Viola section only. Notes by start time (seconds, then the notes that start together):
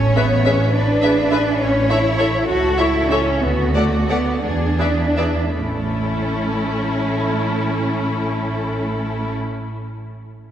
0.16 G#4 B4
0.45 G#4 B4
1.03 G#4 B4
1.31 G#4 B4
1.90 A4 C#5
2.19 A4 C#5
2.78 A4 C#5
3.11 A4 C#5
3.76 A4 D5
4.09 A4 D5
4.79 G#4 B4
5.17 G#4 B4
5.54 C#4